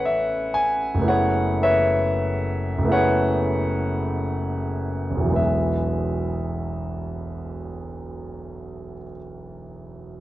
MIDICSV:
0, 0, Header, 1, 2, 480
1, 0, Start_track
1, 0, Key_signature, 4, "major"
1, 0, Tempo, 1015228
1, 516, Tempo, 1169591
1, 517, Time_signature, 6, 3, 24, 8
1, 996, Tempo, 1408451
1, 1476, Tempo, 1699717
1, 1956, Tempo, 1639344
1, 2436, Tempo, 1591512
1, 3399, End_track
2, 0, Start_track
2, 0, Title_t, "Grand piano"
2, 0, Program_c, 0, 0
2, 0, Control_c, 0, 64, 127
2, 0, Note_on_c, 0, 33, 40
2, 0, Note_on_c, 0, 57, 33
2, 0, Note_on_c, 0, 59, 35
2, 0, Note_on_c, 0, 61, 34
2, 0, Note_on_c, 0, 69, 33
2, 0, Note_on_c, 0, 71, 63
2, 0, Note_on_c, 0, 73, 57
2, 0, Note_on_c, 0, 78, 84
2, 26, Note_on_c, 0, 76, 67
2, 256, Note_on_c, 0, 80, 74
2, 268, Note_off_c, 0, 76, 0
2, 448, Note_on_c, 0, 30, 47
2, 455, Note_off_c, 0, 57, 0
2, 462, Note_off_c, 0, 33, 0
2, 462, Note_on_c, 0, 57, 38
2, 471, Note_off_c, 0, 59, 0
2, 478, Note_on_c, 0, 59, 40
2, 484, Note_off_c, 0, 61, 0
2, 491, Note_off_c, 0, 69, 0
2, 491, Note_on_c, 0, 64, 36
2, 507, Note_on_c, 0, 68, 38
2, 508, Note_off_c, 0, 80, 0
2, 511, Note_off_c, 0, 78, 0
2, 511, Note_on_c, 0, 78, 68
2, 517, Note_off_c, 0, 73, 0
2, 517, Note_on_c, 0, 73, 54
2, 518, Note_off_c, 0, 71, 0
2, 518, Note_on_c, 0, 71, 45
2, 524, Control_c, 0, 64, 0
2, 589, Control_c, 0, 64, 127
2, 728, Note_off_c, 0, 73, 0
2, 729, Note_off_c, 0, 71, 0
2, 737, Note_on_c, 0, 76, 76
2, 739, Note_on_c, 0, 71, 59
2, 740, Note_on_c, 0, 73, 57
2, 742, Note_off_c, 0, 78, 0
2, 1169, Note_off_c, 0, 30, 0
2, 1174, Note_on_c, 0, 30, 50
2, 1181, Note_off_c, 0, 57, 0
2, 1186, Note_on_c, 0, 57, 38
2, 1192, Note_off_c, 0, 59, 0
2, 1197, Note_on_c, 0, 59, 41
2, 1202, Note_off_c, 0, 64, 0
2, 1207, Note_on_c, 0, 64, 40
2, 1209, Note_off_c, 0, 68, 0
2, 1210, Note_off_c, 0, 71, 0
2, 1211, Note_off_c, 0, 73, 0
2, 1216, Note_on_c, 0, 68, 40
2, 1220, Note_on_c, 0, 78, 71
2, 1223, Note_off_c, 0, 76, 0
2, 1223, Note_on_c, 0, 73, 55
2, 1225, Note_on_c, 0, 71, 55
2, 1881, Note_on_c, 0, 28, 41
2, 1896, Note_on_c, 0, 35, 35
2, 1909, Note_on_c, 0, 52, 34
2, 1921, Note_on_c, 0, 54, 34
2, 1924, Note_off_c, 0, 30, 0
2, 1929, Note_off_c, 0, 57, 0
2, 1933, Note_off_c, 0, 59, 0
2, 1934, Note_on_c, 0, 56, 34
2, 1937, Note_off_c, 0, 64, 0
2, 1941, Note_off_c, 0, 68, 0
2, 1944, Note_off_c, 0, 73, 0
2, 1945, Note_off_c, 0, 71, 0
2, 1946, Note_on_c, 0, 59, 35
2, 1953, Note_on_c, 0, 76, 47
2, 1954, Note_off_c, 0, 78, 0
2, 1965, Control_c, 0, 64, 0
2, 2052, Control_c, 0, 64, 127
2, 3012, Note_off_c, 0, 28, 0
2, 3028, Note_off_c, 0, 35, 0
2, 3042, Note_off_c, 0, 52, 0
2, 3055, Note_off_c, 0, 54, 0
2, 3068, Note_off_c, 0, 56, 0
2, 3081, Note_off_c, 0, 59, 0
2, 3089, Note_off_c, 0, 76, 0
2, 3399, End_track
0, 0, End_of_file